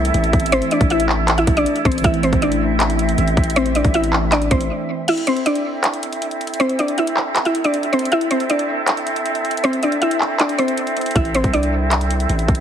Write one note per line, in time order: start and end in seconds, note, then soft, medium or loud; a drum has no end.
0.00 0.11 C2 loud
0.00 1.99 E3 medium
0.00 2.00 A3 medium
0.00 1.73 C4 medium
0.00 2.01 C4 medium
0.00 0.49 D4 medium
0.00 2.02 E4 medium
0.00 4.80 E4 medium
0.00 4.83 A4 medium
0.00 0.48 D5 medium
0.00 1.80 E5 medium
0.05 closed hi-hat medium
0.14 0.33 A1 loud
0.14 closed hi-hat medium
0.24 closed hi-hat medium
0.33 0.61 A1 loud
0.33 kick loud
0.33 closed hi-hat medium
0.40 closed hi-hat medium
0.46 closed hi-hat medium
0.52 0.69 C4 medium
0.52 0.69 C5 loud
0.52 closed hi-hat medium
0.62 closed hi-hat medium
0.71 0.88 D4 medium
0.71 0.88 D5 medium
0.71 closed hi-hat loud
0.81 1.45 A1 loud
0.81 kick loud
0.81 closed hi-hat medium
0.90 1.36 E4 medium
0.90 1.35 E5 medium
0.90 closed hi-hat medium
1.00 closed hi-hat medium
1.09 clap loud
1.28 clap loud
1.28 closed hi-hat medium
1.38 1.55 E4 medium
1.38 1.54 E5 medium
1.38 closed hi-hat medium
1.47 1.65 A1 loud
1.47 kick loud
1.47 closed hi-hat medium
1.57 1.84 D4 medium
1.57 1.84 D5 medium
1.57 closed hi-hat medium
1.66 closed hi-hat medium
1.76 closed hi-hat medium
1.85 2.03 A1 loud
1.85 2.02 C4 medium
1.85 2.02 C5 medium
1.85 kick medium
1.85 closed hi-hat soft
1.92 closed hi-hat medium
1.98 5.03 E3 medium
1.98 closed hi-hat medium
2.03 2.32 A1 loud
2.03 5.04 A3 medium
2.03 5.05 C4 medium
2.03 2.21 E4 medium
2.03 5.05 E5 medium
2.03 2.21 E5 loud
2.03 kick loud
2.03 closed hi-hat medium
2.07 5.06 E4 medium
2.14 closed hi-hat medium
2.23 2.40 C4 medium
2.23 2.40 C5 medium
2.23 closed hi-hat medium
2.33 3.15 A1 loud
2.33 kick loud
2.33 closed hi-hat medium
2.42 3.52 D4 medium
2.42 3.52 D5 medium
2.42 closed hi-hat medium
2.52 closed hi-hat medium
2.80 clap loud
2.80 closed hi-hat medium
2.90 closed hi-hat medium
2.99 closed hi-hat medium
3.09 closed hi-hat medium
3.18 3.36 A1 loud
3.18 closed hi-hat medium
3.28 closed hi-hat medium
3.37 3.83 A1 loud
3.37 kick loud
3.37 closed hi-hat soft
3.44 closed hi-hat medium
3.50 closed hi-hat medium
3.56 3.73 C4 medium
3.56 3.73 C5 loud
3.56 closed hi-hat medium
3.66 closed hi-hat medium
3.75 3.92 D4 medium
3.75 3.92 D5 medium
3.75 closed hi-hat loud
3.85 4.48 A1 loud
3.85 kick loud
3.85 closed hi-hat medium
3.94 4.30 E4 medium
3.94 4.30 E5 medium
3.94 closed hi-hat medium
4.04 closed hi-hat medium
4.13 clap loud
4.32 4.49 D4 medium
4.32 4.49 D5 loud
4.32 clap loud
4.32 closed hi-hat medium
4.42 closed hi-hat medium
4.51 4.69 A1 loud
4.51 5.05 C4 medium
4.51 5.05 C5 medium
4.51 kick medium
4.51 closed hi-hat medium
4.61 closed hi-hat medium
5.08 12.60 C4 medium
5.08 12.60 E4 medium
5.08 5.25 E4 medium
5.08 12.60 A4 medium
5.08 5.24 E5 medium
5.08 12.60 E5 medium
5.08 closed hi-hat medium
5.08 crash medium
5.18 closed hi-hat medium
5.27 5.44 C4 medium
5.27 5.43 C5 medium
5.27 closed hi-hat medium
5.37 closed hi-hat medium
5.46 6.56 D4 medium
5.46 6.56 D5 medium
5.46 closed hi-hat medium
5.55 closed hi-hat medium
5.84 clap loud
5.84 closed hi-hat medium
5.94 closed hi-hat medium
6.03 closed hi-hat medium
6.13 closed hi-hat medium
6.22 closed hi-hat medium
6.31 closed hi-hat soft
6.41 closed hi-hat soft
6.47 closed hi-hat medium
6.54 closed hi-hat medium
6.60 6.77 C4 medium
6.60 6.76 C5 loud
6.60 closed hi-hat medium
6.69 closed hi-hat medium
6.79 6.96 D4 medium
6.79 6.95 D5 medium
6.79 closed hi-hat medium
6.88 closed hi-hat medium
6.98 7.43 E4 medium
6.98 7.43 E5 medium
6.98 closed hi-hat medium
7.07 closed hi-hat medium
7.17 clap medium
7.36 clap loud
7.36 closed hi-hat medium
7.45 7.62 E4 medium
7.45 7.62 E5 medium
7.45 closed hi-hat medium
7.55 closed hi-hat medium
7.64 7.92 D4 medium
7.64 7.91 D5 medium
7.64 closed hi-hat medium
7.74 closed hi-hat medium
7.83 closed hi-hat soft
7.93 8.10 C4 medium
7.93 8.09 C5 medium
7.93 closed hi-hat soft
7.99 closed hi-hat medium
8.05 closed hi-hat medium
8.12 8.29 E4 medium
8.12 8.28 E5 loud
8.12 closed hi-hat medium
8.21 closed hi-hat medium
8.31 8.48 C4 medium
8.31 8.47 C5 medium
8.31 closed hi-hat medium
8.40 closed hi-hat medium
8.50 9.60 D4 medium
8.50 9.60 D5 medium
8.50 closed hi-hat medium
8.59 closed hi-hat medium
8.87 clap loud
8.87 closed hi-hat medium
8.97 closed hi-hat medium
9.07 closed hi-hat medium
9.16 closed hi-hat medium
9.26 closed hi-hat medium
9.35 closed hi-hat soft
9.45 closed hi-hat soft
9.51 closed hi-hat medium
9.57 closed hi-hat medium
9.64 9.81 C4 medium
9.64 9.80 C5 loud
9.64 closed hi-hat medium
9.73 closed hi-hat medium
9.83 10.00 D4 medium
9.83 9.99 D5 medium
9.83 closed hi-hat medium
9.92 closed hi-hat medium
10.02 10.38 E4 medium
10.02 10.37 E5 medium
10.02 closed hi-hat medium
10.11 closed hi-hat medium
10.21 clap medium
10.39 10.57 D4 medium
10.39 10.56 D5 medium
10.39 clap loud
10.39 closed hi-hat medium
10.49 closed hi-hat medium
10.58 11.13 C4 medium
10.58 11.12 C5 medium
10.58 closed hi-hat medium
10.68 closed hi-hat medium
10.78 closed hi-hat medium
10.87 closed hi-hat medium
10.97 closed hi-hat medium
11.01 closed hi-hat medium
11.06 closed hi-hat medium
11.11 closed hi-hat medium
11.15 11.43 A1 loud
11.15 11.32 E4 medium
11.15 11.32 E5 medium
11.15 kick loud
11.15 closed hi-hat medium
11.25 closed hi-hat medium
11.35 11.52 C4 medium
11.35 11.51 C5 medium
11.35 closed hi-hat medium
11.44 12.26 C2 loud
11.44 kick medium
11.44 closed hi-hat medium
11.53 12.60 D4 medium
11.53 12.60 D5 medium
11.53 closed hi-hat medium
11.63 closed hi-hat medium
11.91 clap loud
11.91 closed hi-hat medium
12.01 closed hi-hat medium
12.11 closed hi-hat medium
12.20 closed hi-hat medium
12.29 12.48 A1 loud
12.29 closed hi-hat medium
12.39 closed hi-hat soft
12.48 12.60 A1 loud
12.48 kick loud
12.48 closed hi-hat medium
12.55 closed hi-hat medium